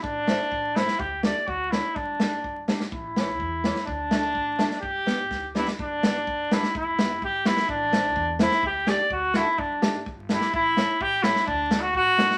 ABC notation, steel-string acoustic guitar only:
X:1
M:2/4
L:1/8
Q:1/4=126
K:G
V:1 name="Steel-string acoustic guitar"
z [A,CE] z [A,CE] | z [G,A,D] z [F,A,D] | z [G,A,D] z [G,A,D] | z [E,A,^C] z [E,A,C] |
z [F,A,D] z [F,A,D] | z [G,B,D] z [G,B,D] | z [G,B,D] z [G,B,D] | z [G,B,E] z [G,B,E] |
z [A,CE] z [A,CE] | z [A,DG] z [A,DF] | z [A,DG] z [A,DG] | z [A,^CE] z [A,CE] |
z [A,DF] z [A,DF] |]